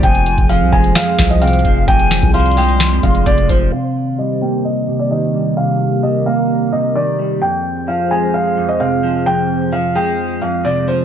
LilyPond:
<<
  \new Staff \with { instrumentName = "Flute" } { \time 4/4 \key c \minor \tempo 4 = 130 aes''4 r2 g''8 f''8 | aes''4 c'''2 r4 | r1 | r1 |
r1 | r1 | }
  \new Staff \with { instrumentName = "Felt piano" } { \time 4/4 \key c \minor g''4 f''8 aes''8 f''8. ees''16 f''4 | g''4 f''8 g''4 f''8 d''8 c''8 | f''4 ees''8 g''8 ees''8. d''16 ees''4 | f''4 ees''8 f''4 ees''8 d''4 |
g''4 f''8 aes''8 f''8. ees''16 f''4 | g''4 f''8 g''4 f''8 d''8 c''8 | }
  \new Staff \with { instrumentName = "Analog synth pad" } { \time 4/4 \key c \minor << { c''1 | d''1 | c''1 | bes'1 |
c''1~ | c''1 | } \\ { <f c' aes'>1~ | <f c' aes'>1 | <ees bes g'>1~ | <ees bes g'>1 |
<f c' aes'>1~ | <f c' aes'>1 | } >> }
  \new Staff \with { instrumentName = "Clean electric guitar" } { \clef bass \time 4/4 \key c \minor f,4 f8 aes4 f,8 c8 f8 | f,4 f8 aes4 f,8 c8 f8 | c4 g8 bes4 c8 ees8 g8 | c4 g8 bes4 c8 ees8 g8 |
f,4 f8 aes4 f,8 c8 f8 | f,4 f8 aes4 f,8 c8 f8 | }
  \new Staff \with { instrumentName = "808-style bass" } { \clef bass \time 4/4 \key c \minor f,,8. f,,8 c,16 f,,8 r8 c,4 f,,8 | f,,8. c,4.~ c,16 f,,8 f,,8 f,,8 | r1 | r1 |
r1 | r1 | }
  \new DrumStaff \with { instrumentName = "Drums" } \drummode { \time 4/4 <hh bd>16 hh16 hh16 <hh bd>16 hh8 bd16 hh16 <hh sn>8 <hh bd sn>16 hh16 hh32 hh32 hh32 hh32 <hh bd>8 | <hh bd>16 hh16 <hh sn>16 <hh bd>16 hh32 hh32 hh32 hh32 hho16 hh16 <hh sn>8 <hh bd>16 hh16 <hh bd>16 hh16 <hh bd>8 | r4 r4 r4 r4 | r4 r4 r4 r4 |
r4 r4 r4 r4 | r4 r4 r4 r4 | }
>>